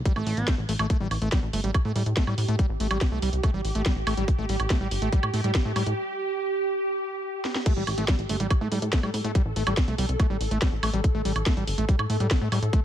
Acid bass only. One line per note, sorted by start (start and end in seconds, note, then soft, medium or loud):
0.05 0.13 G3 medium
0.16 0.39 A3 medium
0.37 0.49 B3 medium
0.48 0.55 A3 medium
0.69 0.73 A3 medium
0.79 0.87 A3 medium
0.90 0.97 A3 medium
1.01 1.08 G3 medium
1.22 1.29 A3 medium
1.32 1.39 G3 medium
1.53 1.61 A3 medium
1.64 1.71 G3 medium
1.85 1.92 A3 medium
1.96 2.03 G3 medium
2.17 2.24 A3 medium
2.27 2.34 G3 medium
2.48 2.56 A3 medium
2.59 2.66 G3 medium
2.80 2.87 A3 medium
2.91 2.98 G3 medium
3.12 3.19 A3 medium
3.22 3.30 G3 medium
3.43 3.51 A3 medium
3.54 3.61 G3 medium
3.75 3.82 A3 medium
3.86 3.93 G3 medium
4.07 4.14 A3 medium
4.17 4.25 G3 medium
4.39 4.46 A3 medium
4.49 4.56 G3 medium
4.70 4.77 A3 medium
4.81 4.88 G3 medium
5.02 5.09 A3 medium
5.13 5.20 G3 medium
5.34 5.41 A3 medium
5.44 5.51 G3 medium
5.65 5.72 A3 medium
5.76 5.83 G3 medium
7.66 7.73 A3 medium
7.77 7.84 G3 medium
7.98 8.05 A3 medium
8.08 8.15 G3 medium
8.29 8.37 A3 medium
8.40 8.47 G3 medium
8.61 8.68 A3 medium
8.72 8.79 G3 medium
8.93 9.00 A3 medium
9.03 9.11 G3 medium
9.24 9.32 A3 medium
9.35 9.42 G3 medium
9.56 9.63 A3 medium
9.67 9.74 G3 medium
9.88 9.95 A3 medium
9.98 10.06 G3 medium
10.20 10.27 A3 medium
10.30 10.37 G3 medium
10.51 10.58 A3 medium
10.62 10.69 G3 medium
10.83 10.90 A3 medium
10.94 11.01 G3 medium
11.15 11.22 A3 medium
11.25 11.32 G3 medium
11.46 11.53 A3 medium
11.57 11.64 G3 medium
11.78 11.85 A3 medium
11.89 11.96 G3 medium
12.10 12.17 A3 medium
12.20 12.27 G3 medium
12.41 12.49 A3 medium
12.52 12.59 G3 medium
12.73 12.80 A3 medium